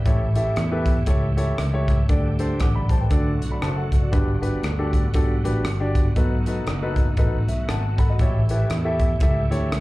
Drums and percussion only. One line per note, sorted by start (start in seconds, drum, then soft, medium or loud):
0.06 kick loud
0.06 closed hi-hat medium
0.35 closed hi-hat medium
0.56 cross-stick medium
0.56 closed hi-hat medium
0.86 kick medium
0.86 closed hi-hat medium
1.06 kick loud
1.06 closed hi-hat medium
1.38 closed hi-hat medium
1.58 cross-stick medium
1.58 closed hi-hat medium
1.88 kick medium
1.88 closed hi-hat medium
2.09 kick loud
2.09 closed hi-hat medium
2.39 closed hi-hat medium
2.60 kick medium
2.60 cross-stick medium
2.60 closed hi-hat medium
2.89 kick medium
2.89 closed hi-hat medium
3.10 kick loud
3.10 closed hi-hat medium
3.42 closed hi-hat medium
3.62 cross-stick loud
3.62 closed hi-hat medium
3.92 kick medium
3.92 closed hi-hat medium
4.13 kick loud
4.13 closed hi-hat medium
4.43 closed hi-hat medium
4.63 cross-stick loud
4.63 closed hi-hat medium
4.93 kick medium
4.93 closed hi-hat medium
5.14 kick loud
5.14 closed hi-hat medium
5.45 closed hi-hat medium
5.65 cross-stick medium
5.65 closed hi-hat medium
5.95 kick medium
5.95 closed hi-hat medium
6.16 kick loud
6.16 closed hi-hat medium
6.46 closed hi-hat medium
6.67 cross-stick loud
6.67 closed hi-hat medium
6.96 kick medium
6.96 closed hi-hat medium
7.17 kick loud
7.17 closed hi-hat medium
7.48 closed hi-hat medium
7.69 cross-stick loud
7.69 closed hi-hat medium
7.98 kick medium
7.98 closed hi-hat medium
8.19 kick loud
8.19 closed hi-hat medium
8.49 closed hi-hat medium
8.70 cross-stick medium
8.70 closed hi-hat medium
9.00 kick medium
9.00 closed hi-hat medium
9.20 kick loud
9.20 closed hi-hat medium
9.52 closed hi-hat medium
9.72 cross-stick loud
9.72 closed hi-hat medium